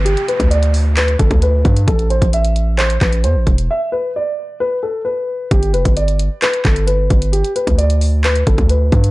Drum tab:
HH |xxxxxxo-xxxxx-xx|xxxxxxx-xxxxx-xx|----------------|xxxxxxx-xxxxx-xx|
CP |--------x-------|--------x-x-----|----------------|--------x-x-----|
BD |---o------oo--o-|o--o------o---o-|----------------|o--o------o---o-|

HH |xxxxxxo-xxxxx-xx|
CP |--------x-------|
BD |---o------oo--o-|